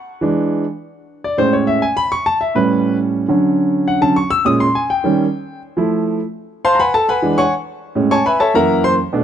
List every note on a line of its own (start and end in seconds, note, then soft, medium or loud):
0.21 0.63 E3 medium
0.21 0.64 G#3 medium
0.21 0.64 D4 medium
1.24 1.38 D5 medium
1.38 1.80 A2 medium
1.38 1.80 G#3 soft
1.38 1.80 C#4 medium
1.38 1.53 C5 medium
1.53 1.67 C#5 medium
1.67 1.82 E5 medium
1.82 1.97 G#5 medium
1.97 2.11 B5 loud
2.12 2.26 C#6 loud
2.26 2.40 A5 loud
2.41 2.55 E5 medium
2.55 3.25 A2 medium
2.55 3.25 G3 medium
2.55 3.25 C#4 medium
2.55 2.96 B4 medium
3.28 4.00 D3 medium
3.28 4.00 F#3 soft
3.28 4.01 C#4 medium
3.88 4.02 F#5 medium
4.01 4.15 D3 medium
4.01 4.15 F#3 soft
4.01 4.15 C#4 medium
4.01 4.16 A5 medium
4.16 4.31 C#6 medium
4.30 4.45 E6 loud
4.45 4.65 A#2 medium
4.45 4.65 G#3 medium
4.45 4.65 C#4 medium
4.45 4.60 D#6 medium
4.60 4.74 C6 medium
4.75 4.89 G#5 medium
4.90 5.59 G5 medium
5.04 5.23 D#3 medium
5.04 5.24 G3 medium
5.04 5.24 C#4 medium
5.77 6.19 F3 medium
5.77 6.19 A3 medium
5.77 6.19 E4 medium
6.65 6.79 C5 medium
6.65 6.79 F5 medium
6.65 6.79 A5 medium
6.65 6.79 C6 loud
6.75 6.77 A#5 medium
6.79 6.94 B4 medium
6.79 6.94 F#5 medium
6.79 6.94 G#5 medium
6.79 6.94 B5 medium
6.94 7.08 A4 medium
6.94 7.08 A5 loud
7.09 7.36 B4 medium
7.09 7.36 F#5 medium
7.09 7.36 G#5 medium
7.09 7.36 B5 medium
7.22 7.42 E3 medium
7.22 7.42 G#3 medium
7.22 7.43 D4 medium
7.38 7.52 C#5 medium
7.38 7.52 F#5 medium
7.38 7.52 G#5 medium
7.38 7.52 C#6 loud
7.95 8.15 A2 medium
7.95 8.16 G#3 medium
7.95 8.16 C#4 medium
8.11 8.25 C#5 medium
8.11 8.25 G#5 medium
8.11 8.25 A5 medium
8.11 8.25 C#6 loud
8.26 8.40 B4 medium
8.26 8.39 E5 medium
8.26 8.40 G#5 medium
8.26 8.40 B5 medium
8.40 8.54 A4 medium
8.40 8.54 C#5 medium
8.40 8.54 E5 medium
8.40 8.54 A5 medium
8.54 8.96 F#2 medium
8.54 8.97 E3 medium
8.54 8.97 A#3 medium
8.54 8.82 A#4 medium
8.54 8.82 E5 medium
8.54 8.82 F#5 medium
8.54 8.82 A#5 medium
8.84 8.93 C5 medium
8.84 8.93 C6 loud
9.13 9.24 B2 medium
9.13 9.24 A3 medium
9.13 9.24 D4 medium